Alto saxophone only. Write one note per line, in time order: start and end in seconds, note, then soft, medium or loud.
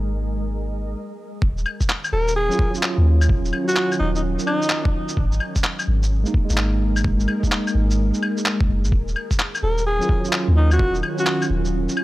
2.13 2.34 A#4 loud
2.36 2.75 G#4 medium
3.68 3.92 F#4 medium
3.99 4.09 D#4 medium
4.16 4.21 D#4 medium
4.47 4.85 D#4 loud
9.63 9.85 A#4 medium
9.86 10.25 G#4 medium
10.57 10.69 D#4 loud
10.72 10.96 F#4 medium
11.20 11.43 F#4 medium